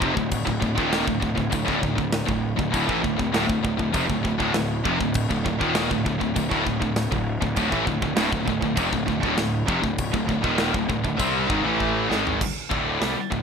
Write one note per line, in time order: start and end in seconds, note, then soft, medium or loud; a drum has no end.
0.00 0.16 F1 medium
0.00 0.15 F2 loud
0.00 0.15 C3 loud
0.00 kick loud
0.15 0.45 D1 medium
0.15 0.40 D2 medium
0.15 0.40 A2 medium
0.15 kick loud
0.31 kick loud
0.31 crash medium
0.45 0.61 D1 medium
0.45 0.59 D2 medium
0.45 0.59 A2 medium
0.45 kick medium
0.60 0.76 D1 medium
0.60 0.75 D2 medium
0.60 0.75 A2 medium
0.60 kick medium
0.75 1.05 D#1 loud
0.75 1.05 D#2 medium
0.75 1.05 A#2 medium
0.75 1.06 D#3 loud
0.75 kick medium
0.93 snare loud
0.93 crash medium
1.05 1.21 D1 medium
1.05 1.18 D2 medium
1.05 1.19 A2 medium
1.05 kick medium
1.20 1.36 D1 medium
1.20 1.34 D2 medium
1.20 1.34 A2 medium
1.20 kick medium
1.35 1.51 D1 medium
1.35 1.49 D2 medium
1.35 1.50 A2 medium
1.35 kick medium
1.51 1.66 D1 medium
1.51 1.64 D2 medium
1.51 1.64 A2 medium
1.51 kick medium
1.51 crash medium
1.65 1.82 D1 medium
1.65 1.79 D2 medium
1.65 1.80 A2 medium
1.65 kick medium
1.81 1.97 D1 medium
1.81 1.94 D2 medium
1.81 1.94 A2 medium
1.81 kick medium
1.95 2.26 D1 medium
1.95 2.20 D2 medium
1.95 2.21 A2 medium
1.95 kick medium
2.13 snare loud
2.13 crash medium
2.26 2.56 D1 medium
2.26 2.51 D2 medium
2.26 2.51 A2 medium
2.26 kick medium
2.57 2.73 D1 medium
2.57 2.69 D2 medium
2.57 2.69 A2 medium
2.57 kick loud
2.70 2.85 D2 loud
2.70 2.84 A2 loud
2.70 kick medium
2.70 crash medium
2.74 2.88 D1 loud
2.86 3.03 A1 loud
2.86 3.01 A2 medium
2.86 3.02 E3 loud
2.86 kick medium
3.01 3.18 D1 medium
3.01 3.15 D2 medium
3.01 3.15 A2 medium
3.01 kick medium
3.16 3.33 D1 medium
3.16 3.31 D2 medium
3.16 3.31 A2 medium
3.16 kick medium
3.32 3.48 D1 loud
3.32 3.45 D2 medium
3.32 3.46 A2 loud
3.32 snare loud
3.32 crash medium
3.46 3.63 D1 medium
3.46 3.62 D2 medium
3.46 3.62 A2 medium
3.46 kick medium
3.63 3.78 D1 medium
3.63 3.76 D2 medium
3.63 3.77 A2 medium
3.63 kick loud
3.77 3.93 D1 medium
3.77 3.92 D2 medium
3.77 3.93 A2 medium
3.77 kick medium
3.92 4.08 F1 loud
3.92 4.06 F2 loud
3.92 4.07 C3 loud
3.92 kick loud
3.92 crash medium
4.07 4.24 D1 medium
4.07 4.21 D2 medium
4.07 4.21 A2 medium
4.07 kick medium
4.23 4.39 D1 medium
4.23 4.37 D2 medium
4.23 4.37 A2 medium
4.23 kick medium
4.38 4.53 D1 medium
4.38 4.53 D2 loud
4.38 4.53 A2 loud
4.38 kick medium
4.54 4.82 D1 medium
4.54 4.79 D2 medium
4.54 4.79 A2 medium
4.54 snare loud
4.54 crash medium
4.84 4.99 F1 loud
4.84 4.99 F2 loud
4.84 4.99 C3 loud
4.84 kick loud
5.00 5.28 D1 medium
5.00 5.24 D2 medium
5.00 5.25 A2 medium
5.00 kick medium
5.14 kick loud
5.14 crash medium
5.30 5.44 D1 medium
5.30 5.44 D2 medium
5.30 5.44 A2 medium
5.30 kick medium
5.45 5.60 D1 medium
5.45 5.60 D2 medium
5.45 5.60 A2 medium
5.45 kick medium
5.60 5.89 D#1 loud
5.60 5.90 D#2 medium
5.60 5.90 A#2 medium
5.60 5.90 D#3 loud
5.60 kick medium
5.75 snare loud
5.75 crash medium
5.91 6.05 D1 medium
5.91 6.05 D2 medium
5.91 6.05 A2 medium
5.91 kick medium
6.06 6.20 D1 medium
6.06 6.19 D2 medium
6.06 6.20 A2 medium
6.06 kick medium
6.20 6.35 D1 medium
6.20 6.34 D2 medium
6.20 6.35 A2 medium
6.20 kick medium
6.35 6.50 D1 medium
6.35 6.50 D2 medium
6.35 6.50 A2 medium
6.35 kick medium
6.35 crash medium
6.51 6.65 D1 loud
6.51 6.65 D2 medium
6.51 6.65 A2 loud
6.51 kick medium
6.66 6.80 D1 medium
6.66 6.79 D2 medium
6.66 6.79 A2 medium
6.66 kick medium
6.80 7.09 D1 medium
6.80 7.05 D2 medium
6.80 7.05 A2 medium
6.80 kick medium
6.96 snare loud
6.96 crash medium
7.11 7.40 D1 medium
7.11 7.35 D2 medium
7.11 7.35 A2 medium
7.11 kick medium
7.41 7.56 D1 medium
7.41 7.56 D2 medium
7.41 7.56 A2 medium
7.41 kick medium
7.56 7.71 D1 medium
7.56 7.71 D2 loud
7.56 7.71 A2 medium
7.56 kick loud
7.56 crash medium
7.72 7.86 A1 loud
7.72 7.86 A2 medium
7.72 7.86 E3 loud
7.72 kick medium
7.87 8.01 D1 medium
7.87 8.01 D2 medium
7.87 8.02 A2 medium
7.87 kick medium
8.02 8.15 D1 medium
8.02 8.16 D2 medium
8.02 8.17 A2 medium
8.02 kick medium
8.16 8.30 D1 loud
8.16 8.31 D2 medium
8.16 8.31 A2 loud
8.16 snare loud
8.16 crash medium
8.32 8.46 D1 medium
8.32 8.47 D2 medium
8.32 8.47 A2 medium
8.32 kick loud
8.46 8.62 D1 loud
8.46 8.62 D2 medium
8.46 8.60 A2 medium
8.46 kick medium
8.50 8.63 A2 medium
8.62 8.76 D1 medium
8.62 8.78 D2 medium
8.62 8.78 A2 medium
8.62 kick medium
8.76 8.91 F1 loud
8.76 8.92 F2 medium
8.76 8.91 C3 loud
8.76 kick loud
8.76 crash medium
8.80 8.93 C3 loud
8.93 9.07 D1 medium
8.93 9.08 D2 medium
8.93 9.08 A2 medium
8.93 kick medium
9.05 9.22 D1 medium
9.05 9.19 D2 medium
9.05 9.20 D2 medium
9.05 9.23 A2 medium
9.05 kick medium
9.10 9.24 D2 medium
9.20 9.36 D1 loud
9.20 9.34 D2 loud
9.20 kick medium
9.24 9.37 D2 medium
9.24 9.37 A2 loud
9.37 9.65 D1 medium
9.37 9.62 D2 medium
9.37 9.62 A2 medium
9.37 snare loud
9.37 crash medium
9.66 9.82 F1 loud
9.66 9.83 F2 loud
9.66 9.81 C3 medium
9.66 kick loud
9.70 9.83 C3 loud
9.81 10.11 D1 medium
9.81 10.06 D2 medium
9.81 kick medium
9.85 10.08 D2 medium
9.85 10.08 A2 medium
9.98 kick loud
9.98 crash medium
10.13 10.27 D1 medium
10.13 10.28 D2 medium
10.13 10.28 A2 medium
10.13 kick medium
10.29 10.43 D1 medium
10.29 10.44 D2 medium
10.29 10.44 A2 medium
10.29 kick medium
10.44 10.72 D#1 loud
10.44 10.73 D#2 medium
10.44 10.73 A#2 loud
10.44 10.73 D#3 loud
10.44 kick medium
10.58 snare loud
10.58 crash medium
10.74 10.88 D1 medium
10.74 10.87 D2 medium
10.74 10.89 A2 medium
10.74 kick loud
10.88 11.03 D1 medium
10.88 11.02 D2 medium
10.88 11.03 A2 medium
10.88 kick medium
11.03 11.18 D1 medium
11.03 11.19 D2 medium
11.03 11.19 A2 medium
11.03 kick medium
11.20 11.47 C2 medium
11.20 11.48 C3 loud
11.20 11.48 G3 loud
11.20 11.49 C4 loud
11.20 kick loud
11.20 crash medium
11.49 11.63 G#1 medium
11.49 11.63 G#2 loud
11.49 11.63 D#3 loud
11.49 kick loud
11.63 12.06 A1 loud
11.63 12.08 A2 medium
11.63 12.08 E3 loud
11.63 12.08 A3 loud
11.80 kick medium
12.09 12.38 G#1 loud
12.09 12.39 G#2 medium
12.09 12.39 D#3 loud
12.09 12.39 G#3 medium
12.09 snare medium
12.27 floor tom loud
12.41 kick loud
12.41 crash loud
12.70 12.98 D1 loud
12.70 12.99 D2 medium
12.70 12.99 A2 medium
12.70 13.00 D3 medium
12.70 kick loud
13.00 13.14 C2 medium
13.00 13.14 C3 medium
13.00 13.14 G3 medium
13.00 snare loud
13.00 open hi-hat soft
13.15 muted picked electric bass stroke soft
13.15 muted distorted electric guitar stroke medium
13.30 13.42 D1 medium
13.30 13.42 D2 medium
13.30 13.42 A2 medium
13.30 kick medium